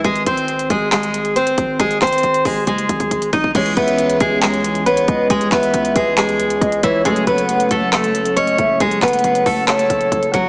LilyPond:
<<
  \new Staff \with { instrumentName = "Soft synth lead" } { \time 4/4 \key cis \minor \tempo 4 = 137 r1 | r1 | r8 e''4. r4 cis''8 dis''8 | r8 e''4. r4 dis''8 cis''8 |
r8 fis''4. r4 dis''8 e''8 | r8 fis''4. cis''2 | }
  \new Staff \with { instrumentName = "Steel-string acoustic guitar" } { \time 4/4 \key cis \minor <gis gis'>8 <bis bis'>4 <gis gis'>8 <gis gis'>4 <bis bis'>4 | <gis gis'>8 <bis bis'>4 <gis gis'>8 <gis gis'>4. <dis' dis''>8 | <gis gis'>8 <b b'>4 <gis gis'>8 <gis gis'>4 <b b'>4 | <gis gis'>8 <b b'>4 <gis gis'>8 <gis gis'>4. <e e'>8 |
<gis gis'>8 <b b'>4 <a a'>8 <a a'>4 <cis' cis''>4 | <gis gis'>8 <b b'>4 <a a'>8 <a a'>4. <fis fis'>8 | }
  \new Staff \with { instrumentName = "Synth keys" } { \time 4/4 \key cis \minor r1 | r1 | <e b cis' gis' cis''>1~ | <e b cis' gis' cis''>1 |
<fis a cis' a' cis''>1~ | <fis a cis' a' cis''>1 | }
  \new Staff \with { instrumentName = "808-style bass" } { \clef bass \time 4/4 \key cis \minor gis,,8 gis,,4 gis,,2 gis,,8 | gis,,8 gis,,8 gis,,8 gis,,8 fis,,8 gis,,4 gis,,8 | cis,8 cis,4 cis,2 cis,8 | cis,8 cis,8 cis,8 cis,4. cis,8 cis,8 |
fis,,8 fis,,4 fis,,2 fis,,8 | fis,,8 fis,,8 fis,,8 fis,,4 fis,,8 fis,,8 fis,,8 | }
  \new DrumStaff \with { instrumentName = "Drums" } \drummode { \time 4/4 <hh bd>16 hh16 <hh bd>16 hh16 hh16 hh16 <hh bd>8 <hc hh>16 hh16 hh16 hh16 hh16 hh16 <hh bd>8 | <hh bd>16 hh16 <hc hh bd>32 hh32 hh32 hh32 hh16 hh16 <hho bd>8 <hh bd>16 hh16 <hh bd>16 <hh bd>16 <hh bd>16 hh16 <hh bd>16 bd16 | <cymc hh bd>16 hh16 <hh bd>16 hh16 hh16 hh16 <hh bd>8 <hc hh>16 hh16 hh16 hh16 hh16 hh16 <hh bd>8 | <hh bd>16 hh16 <hc hh bd>16 hh16 hh16 hh16 <hh bd>8 <hc hh>16 hh16 hh16 hh16 <hh bd>16 hh16 <hh bd>8 |
<hh bd>16 hh16 <hh bd>16 hh16 hh16 hh16 <hh bd>8 <hc hh>16 hh16 hh16 hh16 hh16 hh16 <hh bd>8 | <hh bd>16 hh16 <hc hh bd>32 hh32 hh32 hh32 hh16 hh16 <hho bd>8 <hc hh>16 hh16 <hh bd>16 hh16 <hh bd>16 hh16 <hh bd>8 | }
>>